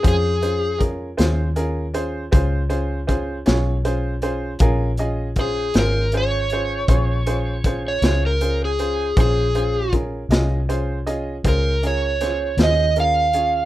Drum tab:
HH |xxxxxxxxxxxx|xxxxxxxxxxxx|xxxxxxxxxxxx|
SD |---o-----o--|---o-----o--|---o----oo--|
BD |o-o---o-o---|o-o---o-o---|o-o---o-----|